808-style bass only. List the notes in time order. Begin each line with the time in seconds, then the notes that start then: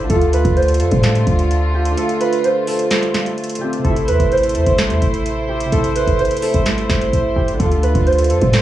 0.10 D2
0.45 D2
0.80 F2
0.92 A2
1.27 D2
3.85 A1
4.08 E2
4.20 A1
4.55 E2
4.67 A1
4.90 E2
5.02 A1
5.72 A1
6.07 A1
6.54 A1
6.78 G1
6.90 A1
7.13 A1
7.36 A1
7.60 D2
7.95 D2
8.30 F2
8.42 A2